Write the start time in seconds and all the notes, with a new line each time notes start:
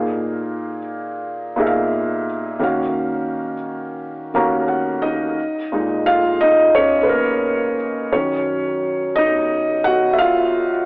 Already playing: A#2 A#3 D#4 G#4 F5
1.56 A#2 A#3 D#4 G#4
1.60 E5
1.67 F5
2.59 D#3 A#3 C#4 F#4
2.63 F5
4.34 D#3 A#3 C#4 F#4 F5 A#5
4.68 F#5
5.02 D#4 D#5
5.72 A#2 G#3 D#4
6.06 F4 F5
6.41 D#4 D#5
6.75 C#4 C#5
7.03 B4
7.09 A#3 A#4
8.12 D#3 F#3 C#4 C#5
9.16 D#4 D#5
9.84 F#4 F#5
10.13 E5
10.18 F4 F5